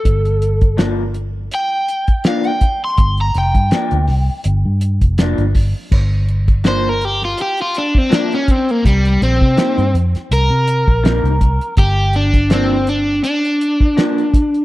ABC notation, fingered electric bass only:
X:1
M:4/4
L:1/16
Q:"Swing 16ths" 1/4=82
K:Gm
V:1 name="Fingered electric bass" clef=bass
G,,,8 z8 | G,,,2 F,,, G,, z D,, C,, z G,,, G,,2 F,,,2 G,,,2 z | G,,,8 z8 | C,,2 B,,, C, z G,, F,, z C,, C,2 B,,,2 C,,2 z |
G,,,8 z8 |]